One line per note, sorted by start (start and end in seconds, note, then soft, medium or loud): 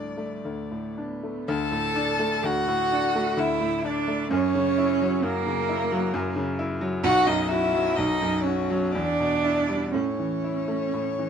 0.00 0.45 D2 medium
0.00 0.71 A2 soft
0.00 0.45 G3 soft
0.00 0.17 A3 soft
0.00 0.98 D4 soft
0.00 0.98 D5 medium
0.17 0.61 A3 soft
0.44 1.45 D2 soft
0.44 1.00 A3 medium
0.71 1.14 A2 soft
0.98 1.48 B3 medium
0.98 1.38 D4 soft
1.23 1.48 A3 soft
1.48 2.42 D2 medium
1.48 2.46 A4 loud
1.48 2.47 A5 loud
1.72 2.10 A2 medium
1.96 2.34 D4 medium
2.19 2.58 A3 medium
2.44 3.36 D2 medium
2.44 3.40 F#4 loud
2.44 3.39 F#5 loud
2.68 3.06 A2 medium
2.92 3.29 D4 medium
3.15 3.53 A3 medium
3.37 4.28 D2 medium
3.37 3.87 E4 loud
3.37 3.87 E5 medium
3.61 3.99 A2 medium
3.85 4.22 D4 medium
3.85 4.30 D4 loud
3.85 4.32 D5 medium
4.08 4.31 A3 medium
4.31 5.22 F#2 medium
4.31 5.24 C#4 loud
4.31 5.26 C#5 loud
4.55 4.91 C#3 medium
4.78 5.14 E4 medium
5.01 5.38 F#3 medium
5.22 6.12 F#2 medium
5.22 6.58 A#3 loud
5.22 6.59 A#4 loud
5.47 5.82 C#3 medium
5.69 6.05 E4 medium
5.92 6.28 F#3 medium
6.14 7.01 F#2 medium
6.36 6.72 C#3 medium
6.59 6.95 E4 medium
6.81 7.04 F#3 medium
7.03 7.97 B1 loud
7.03 7.29 F#4 loud
7.03 7.28 F#5 loud
7.26 7.64 F#2 medium
7.26 7.52 D#4 loud
7.26 7.49 D#5 loud
7.48 7.98 E4 loud
7.48 7.87 F#4 medium
7.48 7.98 E5 loud
7.74 8.11 F#3 medium
7.96 8.91 B1 medium
7.96 8.45 D#4 loud
7.96 8.44 D#5 loud
8.22 8.59 F#2 medium
8.43 8.94 C#4 loud
8.43 8.84 F#4 medium
8.43 8.93 C#5 medium
8.71 8.94 F#3 medium
8.92 9.91 E2 medium
8.92 9.91 D4 loud
8.92 9.93 D5 medium
9.20 9.59 B2 medium
9.44 9.83 E4 medium
9.69 9.93 G3 medium
9.91 10.92 A2 medium
9.91 11.29 C#4 medium
9.91 11.29 C#5 medium
10.19 10.58 E3 soft
10.44 10.83 E4 soft
10.68 11.07 A3 soft
10.94 11.29 A2 medium
11.19 11.29 E3 soft